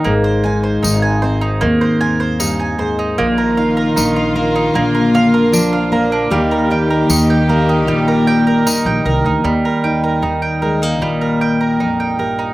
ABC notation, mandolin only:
X:1
M:4/4
L:1/16
Q:1/4=77
K:Eb
V:1 name="Mandolin"
B, c a c E a c E B, c a c E a c E | B, B f B E f B E B, B f B D f B D | G, B g B E g B E G, B g B E g B E | G, B g B E g B E G, B g B E g B E |]